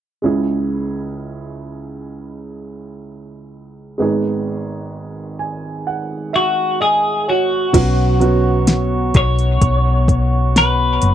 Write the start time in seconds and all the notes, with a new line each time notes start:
0.22 C#2 C#3 G#3 C#4 E4 G#4
3.98 G#1 G#2 D#3 G#3 B3 G#4
5.39 G#5
5.87 F#5
6.33 F#4 E5
6.80 G#4 D#5
7.28 F#4 C#5
7.73 B1 B2 F#3 B3 C#4 F#4 C#5 F#5 C#6, kick, closed hi-hat, crash
8.20 F#3 B3 C#4 F#4, closed hi-hat
8.67 snare, closed hi-hat
9.14 B1 C#5, kick, closed hi-hat
9.39 closed hi-hat
9.61 B1, kick, closed hi-hat
10.08 kick, closed hi-hat
10.56 B4, snare, closed hi-hat
11.02 F#1, closed hi-hat